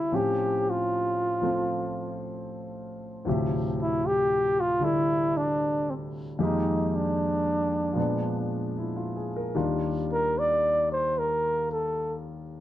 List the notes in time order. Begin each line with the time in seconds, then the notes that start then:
Already playing: B2 C3 D3 G3 D4 E4 B4 C5 E5
0.12 A2 F3 C4 C#4 G4
0.70 F4
1.42 F3 A3 C4 F4
3.25 D2 A2 C3 F3 E5
3.29 G4
3.82 E4
4.07 G4
4.61 F4
4.80 D3 G3 D4 E4
4.84 E4 A4
5.37 D4
5.90 C4
6.39 F2 D#3 G#3 A#3 D#4 G4
6.95 D4
7.93 A#2 F3 G#3 B3
7.98 D4
8.78 E4
8.96 F4
9.16 G#4
9.36 A#4
9.55 D#2 D#3 G3 D4 F4
10.13 A#4
10.39 D5
10.92 C5
11.19 A#4
11.72 A4